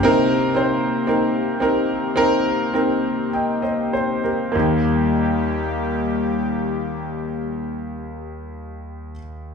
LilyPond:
<<
  \new Staff \with { instrumentName = "Grand piano" } { \time 4/4 \key ees \major \tempo 4 = 48 << { r2. <ees'' g''>16 <c'' ees''>16 c''16 <g' bes'>16~ | <g' bes'>16 r2. r8. | } \\ { <c' ees' bes'>8 <c' ees' c''>8 <c' ees' bes'>8 <c' ees' bes'>8 <c' ees' bes'>8 <c' ees' bes'>8 r4 | <bes ees' g'>1 | } >> }
  \new Staff \with { instrumentName = "Grand piano" } { \clef bass \time 4/4 \key ees \major c4. r2 r8 | ees,1 | }
  \new Staff \with { instrumentName = "Analog synth pad" } { \time 4/4 \key ees \major <ees bes c' g'>1 | <ees g bes g'>1 | }
>>